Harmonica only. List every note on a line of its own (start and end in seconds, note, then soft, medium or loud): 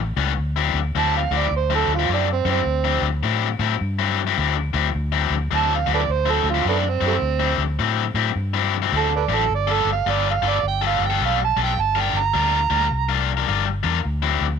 0.98 1.15 A5 medium
1.17 1.39 F5 medium
1.38 1.54 D5 medium
1.57 1.73 C5 medium
1.75 1.92 A4 medium
1.95 2.11 F4 medium
2.14 2.30 D4 medium
2.32 2.49 C4 medium
2.51 3.04 C4 medium
5.55 5.72 A5 medium
5.75 5.91 F5 medium
5.94 6.01 A4 medium
5.94 6.00 B4 medium
5.94 6.14 D5 medium
6.12 6.33 C5 medium
6.31 6.48 A4 medium
6.50 6.67 F4 medium
6.69 6.77 A3 medium
6.69 6.76 B3 medium
6.69 6.91 D4 medium
6.89 7.05 C4 medium
7.07 7.14 G3 medium
7.07 7.15 A3 medium
7.07 7.60 C4 loud
8.97 9.14 A4 medium
9.16 9.25 A4 medium
9.16 9.23 B4 medium
9.16 9.37 D5 medium
9.36 9.52 A4 loud
9.55 9.75 D5 medium
9.73 9.90 A4 medium
9.92 10.12 F5 medium
10.11 10.27 D5 medium
10.31 10.50 F5 medium
10.49 10.65 D5 loud
10.68 10.84 G5 medium
10.87 11.08 F5 medium
11.07 11.23 G5 medium
11.25 11.42 F5 medium
11.44 11.61 A5 medium
11.63 11.83 G5 medium
11.81 12.02 A5 medium
12.00 12.21 G5 medium
12.19 13.28 A#5 loud